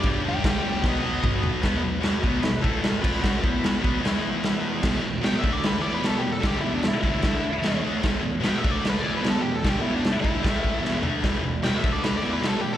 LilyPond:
<<
  \new Staff \with { instrumentName = "Lead electric guitar" } { \time 4/4 \key e \minor \tempo 4 = 150 r8 g'4. dis''4 r4 | r1 | r1 | r4 \tuplet 3/2 { g''8 e''8 d''8 b'8 d''8 b'8 a'8 g'8 a'8 } |
\tuplet 3/2 { g'8 e'8 d'8 e'8 e'4~ } e'4. r8 | r4 \tuplet 3/2 { g''8 e''8 d''8 b'8 d''8 b'8 a'8 g'8 a'8 } | \tuplet 3/2 { g'8 e'8 d'8 e'8 e'4~ } e'4. r8 | r4 \tuplet 3/2 { g''8 e''8 d''8 b'8 d''8 b'8 a'8 g'8 a'8 } | }
  \new Staff \with { instrumentName = "Transistor combo organ" } { \time 4/4 \key e \minor <d' g' b'>8 r8 <d' g' d''>8 r8 <dis' fis' b'>8 r8 <dis' fis' b'>8 r8 | <b fis' b'>8 r8 <b fis' d''>8 r8 <b fis' b'>8 <a e' a'>4 <b fis' b'>8~ | <b fis' b'>8 <b e' b'>4 <b fis' b'>8 <b e' b'>8 r8 <b e' b'>8 r8 | r1 |
r1 | r1 | r1 | <e' g' b'>8 r8 <e' g' b'>8 <d' a' d''>4 <e' g' b'>4 r8 | }
  \new Staff \with { instrumentName = "Distorted electric guitar" } { \clef bass \time 4/4 \key e \minor <g, d g>8 <d g>8 <g, d g>8 <d g>8 <b, fis b>8 <fis b>8 <b, fis b>4 | <b, fis b>8 <b, fis>8 <fis cis' fis'>8 <b, fis b>8 <b, fis>8 <a, e a>4 <f c' f'>8 | <fis cis' fis'>8 <e b e'>4 <b, fis b>8 <e b e'>2 | <e, b, e>8 <e, b,>8 <b, fis b>8 <d a d'>4 <e b e'>8 <b, fis b>8 <e, b,>8 |
<g, d g>8 <e, b, e>8 r8 <g, d g>8 <d a d'>8 r8 <e, b, e>8 <d a d'>8 | <e, b, e>8 <e, b,>8 <b, fis b>8 <d a d'>4 <e b e'>8 <b, fis b>8 <e, b,>8 | <g, d g>8 <e, b, e>8 r8 <g, d g>8 <a, e a>4 <e, b, e>8 <d a d'>8 | <e, b, e>8 <e, b,>8 <b, fis b>8 <d a d'>4 <e b e'>8 <b, fis b>8 <e, b,>8 | }
  \new DrumStaff \with { instrumentName = "Drums" } \drummode { \time 4/4 <cymc bd>4 <cymc bd sn>4 <bd sn>4 <bd toml>8 tomfh8 | <cymc bd sn>4 <cymc sn>8 bd8 <cymc sn>8 bd8 <cymc sn>8 <cymc bd>8 | <cymc bd sn>8 bd8 <cymc sn>8 bd8 <cymc sn>4 <cymc sn>4 | <cymc bd sn>4 <cymc sn>8 bd8 <cymc sn>4 <cymc sn>4 |
<cymc bd sn>4 <cymc sn>8 bd8 <cymc bd sn>4 <cymc sn>4 | <cymc bd sn>4 <cymc sn>8 bd8 <cymc sn>4 <cymc sn>4 | <cymc bd sn>4 <cymc sn>8 bd8 <cymc bd sn>8 bd8 sn8 tomfh8 | <cymc bd sn>4 <cymc sn>8 bd8 <cymc sn>4 <cymc sn>4 | }
>>